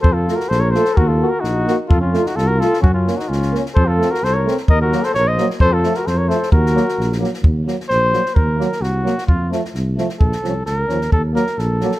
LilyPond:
<<
  \new Staff \with { instrumentName = "Flugelhorn" } { \time 2/4 \tempo 4 = 130 c''16 a'8 bes'16 c''16 des''16 c''8 | bes'16 a'8 bes'16 ges'8. r16 | a'16 f'8 ges'16 a'16 bes'16 a'8 | ges'16 f'8 ges'16 f'8. r16 |
c''16 a'8 bes'16 c''16 des''8 r16 | ees''16 bes'8 c''16 des''16 ees''8 r16 | c''16 a'8 bes'16 c''16 des''16 c''8 | bes'4. r8 |
r4 c''4 | bes'4 ges'4 | f'8 r4. | a'4 bes'4 |
a'8 bes'8 a'4 | }
  \new Staff \with { instrumentName = "Flugelhorn" } { \time 2/4 a'16 f'8 ges'16 a'16 bes'16 a'8 | ges'16 f'8 ges'16 ees'8. r16 | f'16 des'8 ees'16 f'16 ges'16 f'8 | des'16 des'8 ees'16 des'8. r16 |
a'16 f'8 ges'16 a'16 bes'8 r16 | bes'16 ges'8 a'16 bes'16 c''8 r16 | a'16 f'8 ges'16 a'16 bes'16 a'8 | ges'4. r8 |
r2 | r2 | r2 | r2 |
r2 | }
  \new Staff \with { instrumentName = "French horn" } { \time 2/4 r8 f'8 r8 f'8 | r8 ges'8 r8 ges'8 | r8 f'8 r8 f'8 | r8 des'8 r8 des'8 |
r8 c'8 r8 c'8 | r8 bes8 r8 bes8 | r8 a8 r8 a8 | r8 bes8 r8 bes8 |
r8 bes8 r8 bes8 | r8 bes8 r8 bes8 | r8 a8 r8 a8 | r8 des'8 r8 des'8 |
r8 bes8 r8 bes8 | }
  \new Staff \with { instrumentName = "Euphonium" } { \clef bass \time 2/4 r8 a8 r8 a8 | r8 bes8 r8 bes8 | r8 a8 r8 a8 | r8 bes8 r8 bes8 |
r8 a8 r8 a8 | r8 ges8 r8 ges8 | r8 f8 r8 f8 | r8 ges8 r8 ges8 |
r8 ges8 r8 ges8 | r8 ges8 r8 ges8 | r8 f8 r8 f8 | r8 f8 r8 f8 |
r8 ges8 r8 ges8 | }
  \new Staff \with { instrumentName = "Tuba" } { \clef bass \time 2/4 f,4 bes,,4 | ees,4 bes,,4 | f,4 c,4 | ges,4 des,4 |
f,4 c,4 | ees,4 bes,,4 | f,4 f,4 | ees,4 bes,,4 |
ees,4 bes,,4 | ees,4 c,4 | f,4 c,4 | bes,,8 c,8 des,8 ees,8 |
ees,4 bes,,4 | }
  \new DrumStaff \with { instrumentName = "Drums" } \drummode { \time 2/4 bd8 sn16 sn16 sn8 sn16 sn16 | bd4 sn8 sn8 | bd8 sn16 sn16 sn8 sn16 sn16 | bd8 sn16 sn16 sn16 sn16 sn16 sn16 |
bd8 sn16 sn16 sn8 sn16 sn16 | bd8 sn16 sn16 sn8 sn16 sn16 | bd8 sn16 sn16 sn8 sn16 sn16 | bd16 sn16 sn16 sn16 sn16 sn16 sn16 sn16 |
bd8 sn16 sn16 sn8 sn16 sn16 | bd8 sn16 sn16 sn8 sn16 sn16 | bd8 sn16 sn16 sn8 sn16 sn16 | bd16 sn16 sn8 sn8 sn16 sn16 |
bd8 sn16 sn16 sn8 sn16 sn16 | }
>>